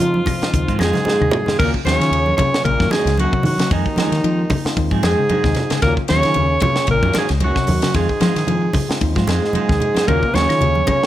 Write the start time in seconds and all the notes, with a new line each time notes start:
Already playing: F2 F3 F4
0.00 C#3 F3 G#3 C4 D#4 F4, closed hi-hat
0.14 muted clean electric guitar stroke, high conga
0.26 C3, muted clean electric guitar stroke, kick, open hi-hat, high conga, low conga, claves
0.42 G#3 C4 D#4 F4, muted clean electric guitar stroke, muted fingered electric bass stroke, snare, closed hi-hat
0.53 D#2 C#3, muted clean electric guitar stroke, kick, closed hi-hat
0.67 G#2 D#3 G#3 C4 F4, kick, closed hi-hat
0.79 F2 G#2 D#3 G#3 C4 F4 G#4, snare, closed hi-hat, high conga, claves
0.94 C#3, snare, closed hi-hat, high conga
1.05 D#3 G#3 C4 F4, muted fingered electric bass stroke, snare, low conga
1.20 D#2 C3, muted clean electric guitar stroke, mid tom, claves
1.31 mid tom, low conga
1.46 D#3 G#3 C4 F4, muted fingered electric bass stroke, snare, low conga
1.59 D#2 A#2 C#3 D#3 F#3 A#3 C#4 F4 F#4 A#4, kick, crash
1.74 muted clean electric guitar stroke, kick
1.85 D#2 C#3 D#3 A#3 C#4 F#4 C#5, snare, ride bell, high conga
2.00 D#3 F#3 A#3 C#4 F4, muted clean electric guitar stroke, snare, ride bell
2.11 D#2 C#3, ride bell
2.26 muted clean electric guitar stroke, high conga
2.37 C3 C#3 F#3 A#3 C#4 F4 C#5, muted clean electric guitar stroke, kick, ride bell, high conga, low conga
2.54 muted clean electric guitar stroke, snare
2.65 A#1 A#2 C#3 A#3 A#4, muted clean electric guitar stroke, kick, ride bell
2.80 F#2 D#3 A#3 F#4, kick, snare
2.91 G#2 D#3 G#3 A#3 C#4 F#4 G#4, muted fingered electric bass stroke, snare, ride bell, high conga
3.05 C#2 C#3, snare, ride bell
3.17 F#2 D#3 F#3 A#3 C#4 F#4, ride bell, high conga
3.33 C3, muted clean electric guitar stroke, kick
3.43 F#2 D#3 F#3 F#4, muted clean electric guitar stroke, open hi-hat, high conga, low conga
3.58 C#3 F#3 A#3 C#4 D#4 F#4, snare, ride bell, high conga
3.70 D#2 F2 D#3 G#3 C4 D#4 G#4, muted clean electric guitar stroke, kick, ride bell
3.86 muted clean electric guitar stroke, kick
3.96 D#3 F3 G#3 C4 D#4 F4 G#4, snare, ride bell, high conga
4.12 D#3, muted clean electric guitar stroke, snare, ride bell
4.23 D#3 F3 G#3 C4 D#4 F4, ride bell
4.39 muted clean electric guitar stroke
4.50 C#3, muted clean electric guitar stroke, kick, open hi-hat, high conga, low conga
4.65 G#3 C4 D#4 F4, muted fingered electric bass stroke, muted clean electric guitar stroke, snare
4.77 D#2 D#3, muted clean electric guitar stroke, kick, ride bell
4.91 G#2 D#3 F3 G#3 C4 G#4, kick, high conga
5.02 F2 G#2 D#3 G#3 C4 G#4, snare, ride bell, high conga
5.18 C#3
5.29 D#3 G#3 C4 G#4, muted fingered electric bass stroke, ride bell, high conga, low conga
5.44 D#2 C3, muted clean electric guitar stroke, kick, snare
5.54 muted clean electric guitar stroke, snare, ride bell, low conga
5.70 C#3 G#3 C4 G#4, muted fingered electric bass stroke, snare, ride bell
5.82 D#2 A#2 C#3 F#3 A#3 C#4 F4 F#4 A#4, muted clean electric guitar stroke, kick, snare, ride bell
5.97 muted clean electric guitar stroke, kick
6.08 D#2 C#3 D#3 A#3 C#4 F#4 C#5, snare, ride bell, high conga
6.23 D#3 F#3 A#3 C#4 F4, muted clean electric guitar stroke, snare, ride bell
6.34 D#2 C#3, ride bell, low conga
6.50 muted clean electric guitar stroke
6.60 C3 C#3 F#3 A#3 C#4 F4 C#5, muted clean electric guitar stroke, kick, ride bell, high conga, low conga
6.64 C#4
6.76 muted clean electric guitar stroke, snare
6.87 A#1 A#2 C#3 A#3, muted clean electric guitar stroke, kick, ride bell
6.91 A#4
7.02 F#2 D#3 A#3 C#4 F#4, kick, high conga
7.13 G#2 D#3 G#3 A#3 C#4 F#4, muted fingered electric bass stroke, snare, ride bell, high conga
7.18 G#4
7.29 C#2 C#3, snare, ride bell
7.40 F#2 D#3 F#3 A#3 C#4 F#4, ride bell, high conga, low conga
7.56 C3, muted clean electric guitar stroke, kick, snare
7.67 D#2, muted clean electric guitar stroke, open hi-hat, high conga, low conga
7.82 C#3 F#3 A#3 C#4 F4 F#4, snare, ride bell
7.94 F2 G#2 D#3 G#3 C4 F4 G#4, kick, snare, ride bell
8.09 muted clean electric guitar stroke, kick
8.20 D#3 F3 G#3 C4 D#4 F4, snare, ride bell, high conga
8.35 D#3, muted clean electric guitar stroke, snare, ride bell
8.47 D#3 F3 G#3 C4 D#4 G#4, ride bell, low conga
8.62 muted clean electric guitar stroke
8.73 C#3, muted clean electric guitar stroke, kick, open hi-hat, high conga, low conga
8.88 G#3 C4 D#4 F4, muted clean electric guitar stroke, muted fingered electric bass stroke, snare
9.01 D#2 D#3, muted clean electric guitar stroke, kick, ride bell
9.15 G#2 F3 G#3 C4 F4, muted clean electric guitar stroke, kick, snare, high conga
9.27 F2 G#2 D#3 G#3 C4 F4 G#4, snare, ride bell, high conga
9.42 G#2, snare
9.53 D#3 G#3 C4 F4, muted fingered electric bass stroke, ride bell, high conga, low conga
9.69 D#2 C3, muted clean electric guitar stroke, kick, snare
9.80 muted clean electric guitar stroke, ride bell, low conga
9.94 G#3 C4 F4, muted clean electric guitar stroke, muted fingered electric bass stroke, snare, ride bell, high conga
10.05 D#2 A#2 C#3 D#3 F#3 A#3 C#4 F4 F#4 A#4, kick, ride bell, claves
10.09 A#3
10.22 muted clean electric guitar stroke, kick
10.32 D#2 C#3 D#3 A#3 C#4 F#4 C#5, snare, ride bell, high conga
10.49 D#3 F#3 A#3 C#4 F4, muted clean electric guitar stroke, snare, ride bell, claves
10.61 D#2 C#3, ride bell, low conga
10.75 muted clean electric guitar stroke, high conga
10.85 C3 C#3 F#3 A#3 C#4 F4 C#5, kick, ride bell, high conga, low conga, claves
10.89 C#4
11.02 muted clean electric guitar stroke